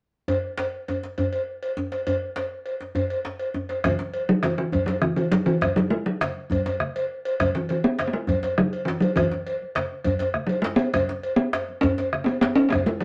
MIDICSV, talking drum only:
0, 0, Header, 1, 2, 480
1, 0, Start_track
1, 0, Key_signature, 4, "major"
1, 0, Tempo, 296004
1, 464, Time_signature, 12, 3, 24, 8
1, 21151, End_track
2, 0, Start_track
2, 0, Title_t, "Talking drum"
2, 0, Program_c, 0, 116
2, 6238, Note_on_c, 0, 52, 76
2, 6956, Note_on_c, 0, 54, 90
2, 6981, Note_off_c, 0, 52, 0
2, 7187, Note_on_c, 0, 52, 64
2, 7211, Note_off_c, 0, 54, 0
2, 7419, Note_off_c, 0, 52, 0
2, 7429, Note_on_c, 0, 52, 84
2, 7883, Note_on_c, 0, 54, 75
2, 7907, Note_off_c, 0, 52, 0
2, 8124, Note_off_c, 0, 54, 0
2, 8133, Note_on_c, 0, 52, 72
2, 8364, Note_off_c, 0, 52, 0
2, 8375, Note_on_c, 0, 52, 75
2, 8606, Note_off_c, 0, 52, 0
2, 8620, Note_on_c, 0, 54, 83
2, 8730, Note_off_c, 0, 54, 0
2, 8855, Note_on_c, 0, 52, 88
2, 9343, Note_on_c, 0, 54, 85
2, 9367, Note_off_c, 0, 52, 0
2, 9574, Note_on_c, 0, 56, 89
2, 9599, Note_off_c, 0, 54, 0
2, 9817, Note_off_c, 0, 56, 0
2, 9827, Note_on_c, 0, 54, 84
2, 10331, Note_off_c, 0, 54, 0
2, 12244, Note_on_c, 0, 52, 69
2, 12461, Note_off_c, 0, 52, 0
2, 12491, Note_on_c, 0, 52, 71
2, 12594, Note_off_c, 0, 52, 0
2, 12716, Note_on_c, 0, 59, 87
2, 13095, Note_off_c, 0, 59, 0
2, 13095, Note_on_c, 0, 59, 64
2, 13190, Note_on_c, 0, 56, 84
2, 13215, Note_off_c, 0, 59, 0
2, 13903, Note_off_c, 0, 56, 0
2, 13912, Note_on_c, 0, 54, 86
2, 14356, Note_on_c, 0, 52, 79
2, 14380, Note_off_c, 0, 54, 0
2, 14603, Note_on_c, 0, 54, 70
2, 14627, Note_off_c, 0, 52, 0
2, 14850, Note_on_c, 0, 52, 81
2, 14875, Note_off_c, 0, 54, 0
2, 16780, Note_off_c, 0, 52, 0
2, 16972, Note_on_c, 0, 54, 78
2, 17219, Note_on_c, 0, 56, 85
2, 17243, Note_off_c, 0, 54, 0
2, 17451, Note_on_c, 0, 59, 98
2, 17475, Note_off_c, 0, 56, 0
2, 18418, Note_off_c, 0, 59, 0
2, 18428, Note_on_c, 0, 59, 93
2, 19152, Note_on_c, 0, 61, 97
2, 19176, Note_off_c, 0, 59, 0
2, 19853, Note_off_c, 0, 61, 0
2, 19853, Note_on_c, 0, 61, 71
2, 19883, Note_on_c, 0, 59, 83
2, 19907, Note_off_c, 0, 61, 0
2, 20120, Note_off_c, 0, 59, 0
2, 20130, Note_on_c, 0, 59, 100
2, 20360, Note_on_c, 0, 61, 98
2, 20384, Note_off_c, 0, 59, 0
2, 20573, Note_off_c, 0, 61, 0
2, 20573, Note_on_c, 0, 61, 73
2, 20600, Note_on_c, 0, 59, 91
2, 20624, Note_off_c, 0, 61, 0
2, 20858, Note_on_c, 0, 56, 80
2, 20882, Note_off_c, 0, 59, 0
2, 21090, Note_on_c, 0, 54, 84
2, 21114, Note_off_c, 0, 56, 0
2, 21151, Note_off_c, 0, 54, 0
2, 21151, End_track
0, 0, End_of_file